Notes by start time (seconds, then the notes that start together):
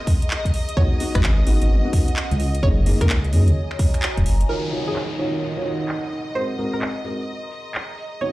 Already playing: G#4 D#5 A#5 C6
0.07 kick, open hi-hat
0.22 closed hi-hat
0.31 clap
0.45 kick, closed hi-hat
0.54 C#4, open hi-hat
0.69 closed hi-hat
0.77 C#2 B3 D#4 F#4 C#5, kick
1.00 B3 D#4 F#4, open hi-hat
1.15 G#1 B3 D#4 B4, finger snap, kick, closed hi-hat
1.23 clap
1.47 G#1 B3 D#4 F#4 F#5, open hi-hat
1.62 G#1, closed hi-hat
1.70 G#1
1.85 B3 D#4 F#4
1.93 B3 D#4 F#4, kick, open hi-hat
2.08 closed hi-hat
2.16 clap
2.31 C#2, closed hi-hat
2.40 open hi-hat
2.55 closed hi-hat
2.63 F#1 A#3 D#4 F#4 G#4 C#5, kick
2.80 C#5
2.86 A#3 D#4 G#4, open hi-hat
3.01 C#2 A#3 D#4 G#4 A#4, finger snap, kick, closed hi-hat
3.09 G#5, clap
3.24 closed hi-hat
3.33 F#2 A#3 D#4 G#4, open hi-hat
3.48 C#2 A#5, closed hi-hat
3.71 finger snap
3.79 kick, open hi-hat
3.94 finger snap, closed hi-hat
4.02 clap
4.17 D#1, kick, closed hi-hat
4.26 F#1, open hi-hat
4.41 closed hi-hat
4.49 D#3 D#4 F4 F#4 A#4 C#5 D#5, downlifter
4.63 A#4
4.73 D#3 F4 F#4 C#5
4.87 D#3 F4 F#4 G#4 C#5
4.96 clap
5.19 D#3 F4 F#4 C#5, open hi-hat
5.36 F#5
5.57 D#3 F4 F#4 C#5
5.65 D#3 F4 F#4 C#5, open hi-hat
5.89 clap
6.12 open hi-hat
6.35 G#2 C4 F#4 G#4 A#4 C5
6.58 G#2 C4 F#4 A#4, open hi-hat
6.73 G#2 C4 F#4 A#4
6.78 D#5 A#5
6.82 clap
7.05 G#2 C4 F#4 A#4, open hi-hat
7.10 C6
7.51 open hi-hat
7.75 clap
7.98 C#4, open hi-hat
8.21 C#3 B3 D#4 F#4 G#4 C#5